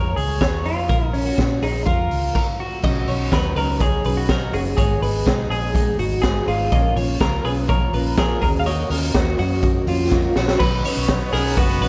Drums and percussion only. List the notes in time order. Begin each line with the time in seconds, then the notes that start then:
0.17 open hi-hat
0.41 kick, snare, closed hi-hat
0.65 open hi-hat
0.89 kick, closed hi-hat
1.14 open hi-hat
1.38 kick, snare, closed hi-hat
1.62 open hi-hat
1.87 kick, closed hi-hat
2.11 open hi-hat
2.35 kick, crash
2.83 kick, crash
3.07 open hi-hat
3.32 kick, snare, closed hi-hat
3.56 open hi-hat
3.80 kick, closed hi-hat
4.04 open hi-hat
4.29 kick, snare, closed hi-hat
4.53 open hi-hat
4.78 kick, closed hi-hat
5.03 open hi-hat
5.27 kick, snare, closed hi-hat
5.51 open hi-hat
5.75 kick, closed hi-hat
5.99 open hi-hat
6.23 kick, snare, closed hi-hat
6.48 open hi-hat
6.72 kick, closed hi-hat
6.97 open hi-hat
7.21 kick, snare, closed hi-hat
7.45 open hi-hat
7.69 kick, closed hi-hat
7.93 open hi-hat
8.18 kick, snare, closed hi-hat
8.42 kick, open hi-hat
8.66 closed hi-hat
8.90 open hi-hat
9.14 kick, snare, closed hi-hat
9.38 open hi-hat
9.63 kick, closed hi-hat
9.87 open hi-hat
10.12 kick, snare
10.36 snare
10.48 snare
10.60 kick, crash
10.84 hi-hat pedal, open hi-hat
11.08 kick, snare, hi-hat pedal, open hi-hat
11.32 hi-hat pedal, open hi-hat
11.57 kick, hi-hat pedal, open hi-hat
11.81 hi-hat pedal, open hi-hat